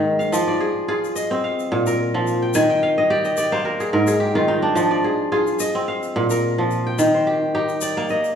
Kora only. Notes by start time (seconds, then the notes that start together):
Already playing: G#2 D#3 A#3 D#4 G#4 D#5
0.19 F5
0.32 F3
0.48 D5
0.60 G#4
0.88 F4 G#4
1.16 D#5
1.31 C4
1.44 F5
1.72 A#2
1.87 A#4
2.14 F3
2.42 G5
2.55 D#3 G#5
2.70 G5
2.83 F5
2.98 D#5
3.10 G4 D5
3.25 D#5
3.38 D5
3.52 A#3 C5
3.65 A#4
3.80 G#4
3.93 G#2 A#4
4.07 G#4
4.20 G4
4.35 D#3 F4
4.48 D#4
4.62 D4
4.75 F3
4.91 D5
5.04 G#4
5.32 F4 G#4
5.60 D#5
5.75 C4
5.88 F5
6.16 A#2
6.31 A#4
6.58 F3
6.87 G5
6.99 D#3
7.14 C5
7.27 G4
7.55 D#4 G4
7.82 D5
7.97 A#3
8.10 D#5